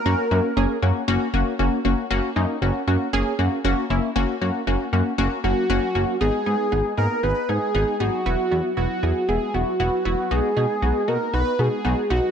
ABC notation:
X:1
M:4/4
L:1/16
Q:1/4=117
K:F#mix
V:1 name="Analog synth lead"
A6 z8 z2 | z16 | z8 z2 F6 | G6 A2 B2 G4 F2- |
F4 F4 G2 F6 | G6 A2 B2 G4 F2 |]
V:2 name="Analog polysynth"
[A,CF]2 [A,CF]2 [A,CG]2 [A,CF]2 [A,CF]2 [A,CF]2 [A,CF]2 [A,CF]2 | [A,CF]2 [A,CD]2 [A,CF]2 [A,CF]2 [A,CG]2 [A,CF]2 [A,CF]2 [A,CE]2 | [A,CF]2 [A,CF]2 [A,CF]2 [A,CF]2 [A,CF]2 [A,CF]2 [A,CF]2 [A,CF]2 | [B,DG]2 [B,DG]2 [B,DG]2 [B,DG]2 [B,DG]2 [B,DG]2 [B,DG]2 [B,DG]2 |
[B,EF]2 [B,EF]2 [B,EF]2 [B,EG]2 [B,EG]2 [B,EF]2 [B,EF]2 [B,EF]2 | [B,DF]2 [B,DG]2 [B,DF]2 [B,DF]2 [B,DF]2 [B,DF]2 [B,DF]2 [B,DF]2 |]
V:3 name="Analog synth bass" clef=bass
F,,, z F,, z F,,, z F,, z F,,, z F,,, z F,,, z F,,, z | F,,, z F,, z F,,, z F,, z F,,, z F,, z F,,, z F,,, z | F,,, z F,, z F,,, z F,, z F,,, z F,,, z F,,, z F,,, z | G,,, z G,, z G,,, z G,, z G,,, z G,, z G,,, z G,,, z |
E,,, z E,, z E,,, z E,, z E,,, z E,,, z E,,, z E,,, z | B,,, z B,, z B,,, z B,, z B,,, z B,, z B,,, z B,,, z |]